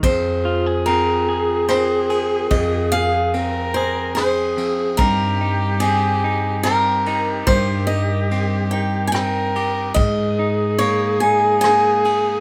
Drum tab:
RD |x-x-xx|x-x-xx|x-x-xx|x-x-xx|
SD |----r-|----r-|----r-|----r-|
BD |o-----|o-----|o-----|o-----|

RD |x-x-xx|
SD |----r-|
BD |o-----|